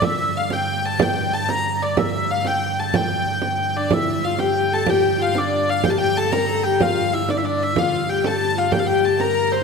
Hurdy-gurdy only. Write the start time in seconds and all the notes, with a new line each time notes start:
0.03 E5
0.37 F5
0.53 G5
0.86 A5
1.02 G5
1.34 A5
1.50 A#5
1.82 D5
1.98 E5
2.31 F5
2.46 G5
2.79 A5
2.95 G5
3.76 D5
3.93 E5
4.24 F5
4.40 G5
4.73 A5
4.90 G5
5.22 F5
5.38 D5
5.70 F5
5.85 G5
5.90 A5
5.98 G5
6.17 A5
6.32 A#5
6.64 G5
6.82 F5
7.14 E5
7.30 D5
7.37 E5
7.45 D5
7.63 E5
7.78 F5
8.09 G5
8.27 A5
8.58 F5
8.72 G5
8.79 F5
8.87 G5
9.05 A5
9.20 A#5
9.52 C5